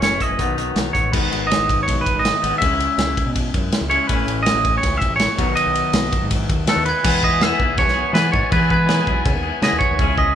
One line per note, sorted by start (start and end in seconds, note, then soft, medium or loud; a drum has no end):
0.01 0.17 F#1 medium
0.01 0.38 A2 medium
0.01 0.38 E3 medium
0.01 0.21 A3 medium
0.01 0.20 C#4 medium
0.01 0.18 E4 medium
0.01 0.21 C#5 medium
0.01 snare loud
0.01 closed hi-hat medium
0.19 0.39 A3 medium
0.19 0.38 C#4 medium
0.19 0.38 E4 medium
0.19 0.77 D#5 medium
0.19 kick medium
0.19 closed hi-hat medium
0.29 0.38 F#1 medium
0.38 0.71 B1 medium
0.38 0.57 B2 medium
0.38 0.57 D#3 medium
0.38 0.56 F#3 medium
0.38 0.55 B3 loud
0.38 0.54 D#4 medium
0.38 kick medium
0.38 closed hi-hat medium
0.55 0.95 B2 medium
0.55 0.73 D#3 medium
0.55 0.74 F#3 medium
0.55 0.75 B3 medium
0.55 0.76 D#4 medium
0.55 closed hi-hat medium
0.74 0.93 B1 medium
0.74 1.11 D#3 medium
0.74 0.95 F#3 medium
0.74 0.94 B3 medium
0.74 0.92 D#4 medium
0.74 snare loud
0.74 closed hi-hat medium
0.93 1.12 A1 medium
0.93 1.12 F#3 medium
0.93 1.12 B3 medium
0.93 1.12 D#4 medium
0.93 1.12 C#5 medium
0.93 kick medium
0.93 closed hi-hat medium
1.12 1.29 G#1 loud
1.12 2.41 G#2 medium
1.12 2.41 D#3 loud
1.12 2.42 G#3 medium
1.12 2.41 B3 loud
1.12 2.41 D#4 medium
1.12 1.47 B4 medium
1.12 kick loud
1.12 crash loud
1.31 1.55 G#1 medium
1.31 ride medium
1.47 1.83 D#5 medium
1.51 snare loud
1.51 ride medium
1.58 1.83 G#1 medium
1.69 kick medium
1.69 ride medium
1.83 2.60 G#2 medium
1.83 2.04 C#5 medium
1.87 2.04 B1 medium
1.87 2.60 D#3 medium
1.87 2.61 G#3 medium
1.87 2.61 B3 medium
1.87 2.61 D#4 medium
1.87 kick medium
1.87 ride medium
2.01 2.23 B4 medium
2.06 kick medium
2.06 ride medium
2.15 2.31 G#1 medium
2.15 2.58 D#5 medium
2.25 snare loud
2.25 ride medium
2.42 2.51 G#1 medium
2.42 2.62 G#2 medium
2.42 2.60 D#3 medium
2.42 2.59 G#3 medium
2.42 2.60 B3 medium
2.42 2.60 D#4 medium
2.42 ride medium
2.58 2.70 C#2 loud
2.58 3.89 C#3 medium
2.58 3.89 G#3 medium
2.58 3.30 E5 medium
2.58 kick loud
2.58 ride medium
2.62 3.89 C#4 medium
2.62 3.88 E4 medium
2.70 2.86 C#2 medium
2.80 ride medium
2.98 3.14 C#2 loud
2.98 snare loud
2.98 ride medium
3.17 kick medium
3.17 ride medium
3.26 3.50 B2 medium
3.35 4.08 C#3 medium
3.35 4.09 G#3 medium
3.35 4.10 C#4 medium
3.35 4.10 E4 medium
3.35 kick medium
3.35 ride medium
3.54 3.70 F#2 medium
3.54 kick medium
3.54 ride medium
3.72 snare loud
3.72 ride medium
3.81 3.97 C#2 medium
3.89 4.09 C#3 medium
3.89 4.09 G#3 medium
3.89 4.08 C#4 medium
3.89 4.08 E4 medium
3.89 4.07 C#5 medium
3.89 ride medium
4.07 4.25 A1 loud
4.07 5.36 A2 medium
4.07 5.37 E3 medium
4.07 5.38 A3 medium
4.07 5.38 C#4 loud
4.07 4.42 B4 medium
4.07 kick loud
4.07 ride medium
4.11 5.38 E4 medium
4.27 4.51 A1 medium
4.27 ride medium
4.43 4.77 D#5 loud
4.43 ride medium
4.47 snare loud
4.54 4.78 A1 medium
4.65 kick medium
4.65 ride medium
4.78 4.97 C#5 medium
4.83 4.99 C#2 loud
4.83 5.37 A2 medium
4.83 5.38 E3 medium
4.83 5.38 A3 medium
4.83 5.38 C#4 medium
4.83 5.39 E4 medium
4.83 kick medium
4.83 ride medium
4.97 5.15 E5 loud
5.02 kick medium
5.02 ride medium
5.10 5.26 A1 medium
5.16 5.52 C#5 medium
5.16 ride medium
5.20 snare loud
5.36 5.54 B1 medium
5.36 6.65 B2 medium
5.36 6.66 D#3 loud
5.36 6.66 F#3 medium
5.36 6.67 B3 loud
5.36 6.67 D#4 loud
5.36 kick loud
5.36 ride medium
5.56 6.26 D#5 medium
5.56 ride medium
5.66 5.82 B1 medium
5.75 ride medium
5.93 6.09 B1 loud
5.93 snare loud
5.93 ride medium
6.12 6.87 B2 medium
6.12 6.86 D#3 medium
6.12 6.86 F#3 medium
6.12 6.86 B3 medium
6.12 6.85 D#4 medium
6.12 kick medium
6.12 ride medium
6.22 6.45 G#2 medium
6.31 kick medium
6.31 ride medium
6.49 6.65 D#2 medium
6.49 kick loud
6.49 ride medium
6.66 6.84 B2 medium
6.66 6.85 D#3 medium
6.66 6.85 F#3 medium
6.66 6.86 B3 medium
6.66 6.86 D#4 medium
6.66 6.85 A4 medium
6.66 6.86 F#6 medium
6.66 snare loud
6.66 ride loud
6.76 6.92 D#2 medium
6.85 7.24 B4 medium
6.85 7.22 G#6 medium
6.85 ride medium
7.03 7.51 E2 loud
7.03 7.39 E3 medium
7.03 7.40 G#3 medium
7.03 7.24 B3 loud
7.03 7.23 E4 loud
7.03 7.21 G#4 loud
7.03 kick loud
7.03 crash loud
7.03 crash medium
7.22 7.41 B3 medium
7.22 7.42 E4 medium
7.22 7.42 G#4 medium
7.22 7.43 D#5 loud
7.22 7.41 B6 medium
7.22 kick medium
7.27 7.42 G#3 medium
7.39 8.49 E3 medium
7.39 8.12 G#3 medium
7.39 7.61 B3 loud
7.39 7.60 E4 medium
7.39 7.59 G#4 loud
7.39 7.78 E5 loud
7.39 7.78 B6 medium
7.39 snare loud
7.39 crash medium
7.59 7.78 B1 medium
7.59 7.96 B3 medium
7.59 7.94 E4 medium
7.59 7.93 G#4 medium
7.59 kick medium
7.63 7.99 G#3 medium
7.77 7.86 D#2 medium
7.77 8.13 C#5 loud
7.77 8.13 G#6 medium
7.77 kick loud
7.77 crash medium
7.86 8.02 B1 medium
7.86 snare soft
7.93 8.13 B3 medium
7.93 8.13 E4 medium
7.93 8.15 G#4 medium
8.00 8.15 G#3 medium
8.12 8.29 E3 loud
8.12 8.51 E3 medium
8.12 8.50 G#3 medium
8.12 8.51 B3 medium
8.12 8.52 E4 medium
8.12 8.52 G#4 medium
8.12 8.32 B4 medium
8.12 snare loud
8.12 crash medium
8.17 8.33 G#6 medium
8.32 8.41 G#2 medium
8.32 8.50 C#5 medium
8.32 8.51 A6 medium
8.32 kick medium
8.50 8.86 E3 medium
8.50 8.99 E3 loud
8.50 8.86 G#3 medium
8.50 8.71 B3 medium
8.50 8.70 E4 loud
8.50 8.68 G#4 loud
8.50 8.70 B4 medium
8.50 8.69 G#6 medium
8.50 kick loud
8.50 crash medium
8.69 8.89 G#3 medium
8.69 8.88 B3 medium
8.69 8.89 E4 medium
8.69 8.89 G#4 medium
8.69 9.22 B4 medium
8.69 kick medium
8.74 9.23 G#6 medium
8.86 9.24 E3 medium
8.86 9.25 G#3 loud
8.86 9.10 B3 loud
8.86 9.08 E4 loud
8.86 9.06 G#4 loud
8.86 snare loud
8.86 crash medium
9.07 9.23 B1 medium
9.07 9.46 G#3 medium
9.07 9.46 B3 medium
9.07 9.44 E4 medium
9.07 9.42 G#4 medium
9.07 kick medium
9.26 9.33 C#3 loud
9.26 kick loud
9.26 crash medium
9.34 9.50 D#2 medium
9.43 9.62 G#3 medium
9.43 9.62 B3 medium
9.43 9.63 E4 medium
9.43 9.64 G#4 medium
9.62 9.70 C#3 loud
9.62 9.98 E3 medium
9.62 9.98 G#3 medium
9.62 10.00 B3 medium
9.62 9.99 E4 medium
9.62 9.99 G#4 medium
9.62 9.78 D#5 medium
9.62 9.80 B6 medium
9.62 snare loud
9.62 crash medium
9.73 9.80 D#2 medium
9.79 10.14 C#5 medium
9.79 10.15 G#6 medium
9.79 kick medium
9.91 9.98 D#2 medium
9.98 10.35 C#2 loud
9.98 10.33 C#3 medium
9.98 10.34 G#3 medium
9.98 10.18 B3 medium
9.98 10.19 C#4 loud
9.98 10.18 E4 loud
9.98 10.16 G#4 loud
9.98 kick loud
9.98 crash medium
10.18 10.35 G#3 medium
10.18 10.35 B3 medium
10.18 10.35 C#4 medium
10.18 10.35 E4 medium
10.18 10.35 G#4 medium
10.18 10.35 D#5 medium
10.18 10.35 B6 medium
10.18 kick medium